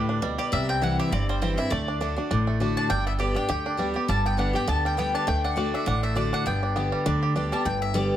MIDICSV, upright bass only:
0, 0, Header, 1, 2, 480
1, 0, Start_track
1, 0, Key_signature, 1, "major"
1, 0, Tempo, 297030
1, 844, Time_signature, 4, 2, 24, 8
1, 13199, End_track
2, 0, Start_track
2, 0, Title_t, "Upright bass"
2, 0, Program_c, 0, 32
2, 0, Note_on_c, 0, 38, 80
2, 589, Note_off_c, 0, 38, 0
2, 848, Note_on_c, 0, 36, 92
2, 1557, Note_off_c, 0, 36, 0
2, 1803, Note_on_c, 0, 31, 87
2, 2514, Note_off_c, 0, 31, 0
2, 2775, Note_on_c, 0, 38, 97
2, 3481, Note_off_c, 0, 38, 0
2, 3728, Note_on_c, 0, 33, 84
2, 4437, Note_off_c, 0, 33, 0
2, 4690, Note_on_c, 0, 31, 89
2, 5398, Note_off_c, 0, 31, 0
2, 5638, Note_on_c, 0, 38, 86
2, 6351, Note_off_c, 0, 38, 0
2, 6599, Note_on_c, 0, 31, 96
2, 7311, Note_off_c, 0, 31, 0
2, 7555, Note_on_c, 0, 38, 85
2, 8269, Note_off_c, 0, 38, 0
2, 8526, Note_on_c, 0, 38, 94
2, 9236, Note_off_c, 0, 38, 0
2, 9479, Note_on_c, 0, 33, 83
2, 10192, Note_off_c, 0, 33, 0
2, 10448, Note_on_c, 0, 31, 91
2, 11158, Note_off_c, 0, 31, 0
2, 11410, Note_on_c, 0, 38, 86
2, 12120, Note_off_c, 0, 38, 0
2, 12366, Note_on_c, 0, 31, 96
2, 13078, Note_off_c, 0, 31, 0
2, 13199, End_track
0, 0, End_of_file